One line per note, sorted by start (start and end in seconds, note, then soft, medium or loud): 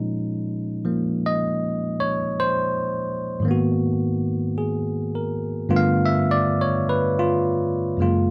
0.00 3.44 A#2 soft
0.00 0.83 F3 soft
0.00 3.45 G#3 soft
0.00 3.45 C#4 soft
0.00 3.45 D#4 medium
0.84 3.44 F3 soft
0.84 3.44 A#3 soft
1.26 1.97 D#5 medium
2.00 2.33 C#5 medium
2.40 2.84 C5 medium
3.40 5.68 G#2 medium
3.40 5.69 D#3 soft
3.45 5.70 A#3 soft
3.45 5.69 B3 soft
3.51 5.73 F#4 medium
4.58 5.49 G#4 soft
5.15 5.95 A#4 soft
5.69 7.98 G2 medium
5.69 7.99 D3 medium
5.69 7.99 A3 soft
5.69 7.99 B3 medium
5.69 7.18 F4 medium
5.76 6.11 F5 medium
6.06 6.45 E5 medium
6.31 6.57 D5 medium
6.61 6.81 C#5 medium
6.89 7.25 B4 medium
7.19 7.44 F4 medium
7.97 8.31 F#2 soft
7.97 8.31 C#3 soft
7.97 8.31 G#3 soft
8.01 8.31 A#3 soft
8.01 8.31 F4 medium